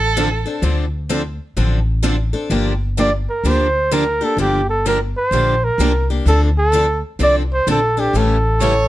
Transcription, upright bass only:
0.00 0.43 A1 medium
0.62 1.38 D2 medium
1.57 2.32 A1 medium
2.50 3.25 G1 medium
3.44 4.19 D2 medium
4.37 5.13 G1 medium
5.31 5.72 A#1 medium
5.78 6.19 C2 medium
6.26 7.01 D2 medium
7.19 7.60 C2 medium
7.67 8.07 A#1 medium
8.13 8.88 A1 medium

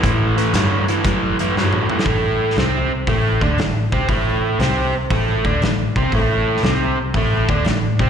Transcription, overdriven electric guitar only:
0.04 0.35 A2 medium
0.04 0.35 E3 medium
0.37 0.53 A2 medium
0.37 0.53 E3 medium
0.54 0.85 A2 medium
0.54 0.85 F#3 medium
0.89 1.04 A2 medium
0.89 1.04 E3 medium
1.06 1.36 A2 medium
1.06 1.37 E3 medium
1.40 1.55 A2 medium
1.40 1.55 E3 medium
1.57 1.88 A2 medium
1.57 1.88 F#3 medium
1.90 2.05 A2 medium
1.90 2.06 E3 medium
2.06 2.57 A2 medium
2.06 2.57 A3 medium
2.58 2.91 C3 medium
2.58 2.91 C4 medium
3.07 3.41 A2 medium
3.07 3.42 A3 medium
3.42 3.58 D3 medium
3.42 3.59 D4 loud
3.59 3.86 A2 medium
3.92 4.08 C3 medium
3.92 4.09 C4 medium
4.08 4.59 A2 medium
4.08 4.60 A3 medium
4.60 4.93 C3 medium
4.60 4.94 C4 medium
5.11 5.44 A2 medium
5.11 5.45 A3 medium
5.45 5.61 D3 medium
5.45 5.62 D4 medium
5.63 5.90 A2 medium
5.97 6.13 C3 medium
5.97 6.13 C4 medium
6.14 6.64 A2 medium
6.14 6.64 A3 loud
6.64 6.97 C3 medium
6.64 6.97 C4 medium
7.16 7.49 A2 medium
7.16 7.49 A3 medium
7.50 7.66 D3 medium
7.50 7.66 D4 medium
7.67 7.94 A2 medium
8.00 8.10 C3 medium
8.00 8.10 C4 medium

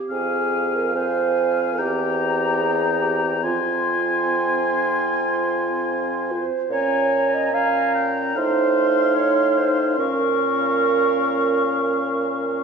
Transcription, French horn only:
0.10 0.91 C4 soft
0.95 1.77 C4 soft
1.79 3.40 C4 soft
3.44 6.41 C4 soft
6.71 7.50 C#4 soft
7.53 8.37 C#4 soft
8.36 9.99 D#4 soft
9.97 12.64 C#4 soft

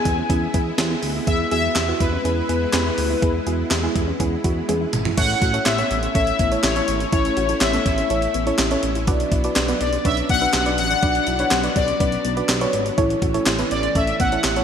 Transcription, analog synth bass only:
0.05 0.22 E2 loud
0.30 0.47 E2 loud
0.54 0.71 E2 medium
0.78 0.95 E2 loud
1.03 1.20 D2 medium
1.27 1.44 E2 loud
1.52 1.69 E2 loud
1.76 1.93 E2 loud
2.00 2.17 E2 loud
2.25 2.42 E2 loud
2.49 2.66 E2 medium
2.74 2.91 E2 loud
2.98 3.15 D2 loud
3.22 3.39 E2 loud
3.47 3.64 E2 loud
3.71 3.88 E2 loud
3.95 4.13 E2 loud
4.20 4.37 E2 loud
4.44 4.61 E2 loud
4.69 4.86 E2 loud
4.93 5.10 G#1 medium
5.18 5.35 A1 loud
5.42 5.59 A1 loud
5.66 5.83 A1 loud
5.91 6.08 A1 loud
6.15 6.32 A1 loud
6.40 6.57 A1 medium
6.64 6.81 A1 loud
6.88 7.05 G#1 loud
7.13 7.30 A1 loud
7.37 7.54 A1 loud
7.61 7.78 A1 loud
7.86 8.03 A1 loud
8.10 8.27 A1 loud
8.35 8.52 A1 loud
8.59 8.76 A1 loud
8.83 9.09 A1 loud
9.08 9.25 B1 loud
9.32 9.49 B1 loud
9.56 9.73 B1 loud
9.81 9.98 B1 loud
10.05 10.22 B1 loud
10.30 10.47 B1 medium
10.54 10.80 B1 loud
10.78 10.95 A1 loud
11.03 11.20 B1 loud
11.27 11.44 B1 loud
11.52 11.69 B1 loud
11.76 11.93 B1 loud
12.00 12.17 B1 loud
12.25 12.42 B1 loud
12.49 12.66 B1 loud
12.73 12.91 G#1 loud
12.98 13.15 A1 loud
13.22 13.39 A1 loud
13.47 13.64 A1 loud
13.71 13.88 A1 loud
13.95 14.12 A1 loud
14.20 14.37 A1 medium
14.44 14.61 A1 loud

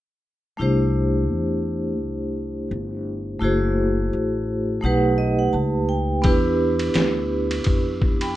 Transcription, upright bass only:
0.60 1.30 C2 medium
1.30 2.00 E2 medium
2.00 2.67 C2 medium
2.71 3.38 G1 medium
3.41 4.08 F#1 medium
4.13 4.80 A1 medium
4.84 5.50 B1 medium
5.54 6.20 C#2 medium
6.24 6.91 E2 medium
6.95 7.62 D2 medium
7.67 8.33 F2 medium

